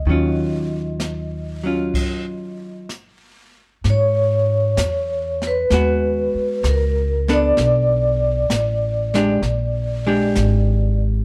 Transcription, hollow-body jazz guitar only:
0.07 2.90 D#3 soft
0.07 1.62 F#3 soft
0.07 1.65 C#4 soft
0.12 1.66 F4 soft
1.63 2.90 F#3 soft
1.63 2.91 C#4 soft
1.63 2.91 F4 soft
5.72 7.16 G#3 soft
5.72 7.17 B3 medium
5.72 7.17 F#4 medium
7.29 8.45 B3 medium
7.29 8.45 D4 medium
7.29 8.45 A4 medium
9.15 9.40 G#3 medium
9.15 9.41 D4 medium
9.15 9.41 G4 medium
10.07 11.23 G#3 medium
10.07 11.23 D4 medium
10.07 11.24 G4 medium

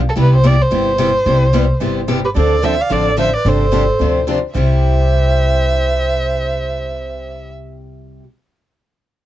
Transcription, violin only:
0.09 0.14 A4 medium
0.20 0.33 B4 medium
0.36 0.48 C5 medium
0.47 0.64 D5 loud
0.62 2.10 C5 medium
2.25 2.30 B4 medium
2.37 2.66 D5 medium
2.65 2.83 E5 medium
2.81 2.94 F5 medium
2.92 3.19 D5 medium
3.20 3.34 E5 medium
3.36 3.49 D5 medium
3.48 4.29 C5 medium
4.54 7.49 E5 medium

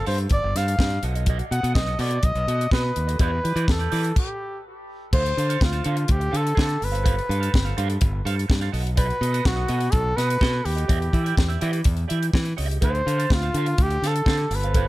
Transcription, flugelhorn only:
0.07 0.18 C5 medium
0.33 0.58 D5 loud
0.57 1.04 F5 loud
1.52 1.74 F#5 loud
1.75 1.97 D#5 loud
2.01 2.26 D5 loud
2.24 2.72 D#5 loud
2.72 3.17 B4 loud
3.21 3.72 B4 loud
3.71 4.17 A4 medium
4.18 4.62 G4 medium
5.14 5.65 C5 loud
5.63 5.86 F4 loud
5.86 6.13 F4 medium
6.11 6.38 G4 loud
6.37 6.59 A4 loud
6.60 6.86 A4 medium
6.84 7.79 B4 medium
8.98 9.48 B4 loud
9.46 9.92 F#4 loud
9.91 10.18 A4 loud
10.16 10.66 B4 loud
10.65 11.61 G4 medium
12.84 13.35 C5 loud
13.33 13.84 F4 loud
13.82 14.08 G4 loud
14.07 14.57 A4 loud
14.55 14.88 B4 medium

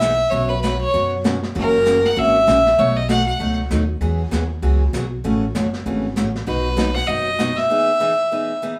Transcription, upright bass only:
0.00 0.20 B1 medium
0.32 0.81 B1 medium
0.94 1.43 F#2 medium
1.55 2.05 F#1 loud
2.17 2.43 G#1 medium
2.48 2.74 A#1 medium
2.79 3.28 B1 medium
3.40 3.66 C#2 medium
3.71 3.97 D#2 medium
4.01 4.26 E2 medium
4.32 4.58 D#2 medium
4.62 4.89 C#2 medium
4.93 5.19 B1 medium
5.25 5.49 A1 medium
5.55 5.81 F#1 medium
5.86 6.12 G#1 medium
6.17 6.43 A1 medium
6.47 6.96 B1 medium
7.08 7.58 F#1 medium

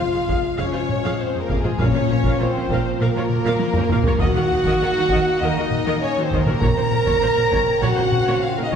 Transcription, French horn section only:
0.00 0.60 F4 loud
0.61 1.21 C#4 loud
1.22 1.41 C4 medium
1.40 1.60 A#3 medium
1.60 1.80 G#3 medium
1.80 2.39 C#4 loud
2.40 2.83 C4 loud
3.00 4.19 A#3 loud
4.22 5.42 F#4 loud
5.41 6.02 D#4 loud
6.00 6.21 C#4 loud
6.22 6.42 C4 loud
6.42 6.62 A#3 loud
6.60 7.81 A#4 loud
7.83 8.43 F#4 loud
8.41 8.62 F4 loud
8.60 8.76 D#4 medium

